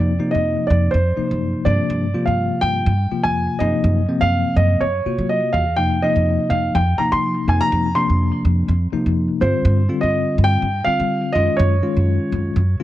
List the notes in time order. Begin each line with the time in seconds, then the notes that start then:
Already playing: F2 C3 F3 A#3 D#4 D5
0.19 C3 F3 A#3 D#4
0.31 F2 D#5
0.67 F2 D5
0.91 F2 C5
1.17 C3 F3 A#3 D#4, muted upright bass stroke
1.31 F#2
1.65 G2 C3 F3 A#3 D4 D5
1.90 G2
2.14 C3 F3 A#3 F4
2.26 G2 F5
2.61 G2 G5
2.86 G2
3.11 C3 F3 A#3 F4, muted upright bass stroke
3.24 F2 G#5
3.59 F#2 C3 F3 A#3 D#4 D#5
3.84 F#2
4.08 C3 F3 A#3 C4
4.21 F#2 F5
4.56 F#2 D#5
4.81 F#2 C#5
5.06 C3 A#3 F4 F#4, muted upright bass stroke
5.19 F#3
5.29 D#5
5.53 E2 F5
5.76 F2 C3 F3 A#3 D#4 G5
6.02 C3 F3 A#3 D#4 D#5
6.16 F2
6.50 F2 F5
6.75 F2 G5
6.98 C3 F3 A#3 D#4 A#5, muted upright bass stroke
7.12 F3 C6
7.48 F2 C3 F3 A#3 D#4 G#5
7.61 A#5
7.72 F2
7.95 C3 F3 A#3 D4 C6
8.10 F2
8.45 F2
8.68 F2
8.93 C3 F3 A#3 D#4, muted upright bass stroke
9.06 F2
9.41 G2 D3 G3 C4 F4 C5
9.65 G2
9.89 D3 G3 C4 F4
10.01 G2 D#5
10.38 G2
10.44 G5
10.62 G2
10.85 D3 G3 C4 F4 F5, muted upright bass stroke
11.00 G3
11.33 F#2 D#3 G#3 C#4 F4 D#5
11.57 F#2 C#5
11.82 D#3 G#3 C#4 F4
11.97 F#2
12.32 F#2
12.56 F#2
12.80 D#3 F4